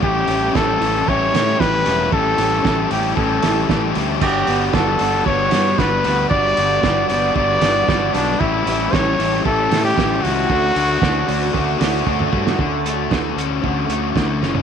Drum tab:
CC |----------------|----------------|x---------------|----------------|
HH |--o---o---o---o-|--o---o---o---o-|--o---o---o---o-|--o---o---o---o-|
SD |----o-----o-o-o-|----o-----o-o-o-|----o-----o-o-o-|----o-----o-o-o-|
T2 |----------------|----------------|----------------|----------------|
FT |----------------|----------------|----------------|----------------|
BD |o---o---o---o---|o---o---o---o---|o---o---o---o---|o---o---o---o---|

CC |----------------|----------------|----------------|
HH |--o---o---o---o-|--o---o---o-----|--x---x---x-----|
SD |----o-----o-o-o-|----o-----o----o|----o-------o-o-|
T2 |----------------|-------------o--|----------------|
FT |----------------|----------------|---------------o|
BD |o---o---o---o---|o---o---o---o-o-|o---o---o---o---|